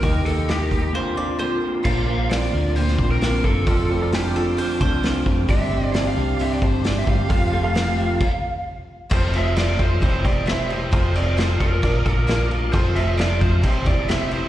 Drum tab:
CC |----------------|x---------------|----------------|----------------|
HH |o-o-o-o---------|----o---o---o---|o---o---o---o---|o---o---o---o---|
SD |----o-----------|----oo---o--o---|----o-------o---|----o-------o---|
BD |o-----o---------|o---------o---o-|o---------o---o-|o---------o---o-|

CC |--------x-------|x-x-x-x-x-x-x-x-|x-x-x-x-x-x-x-x-|x-x-x-x-x-x-x-x-|
HH |o---o-----------|----------------|----------------|----------------|
SD |----o-----------|----o-------o---|----o-------o---|----o-------o---|
BD |o-------o-------|o-----o-o-o-----|o-----o-o-o-----|o-----o-o-o-----|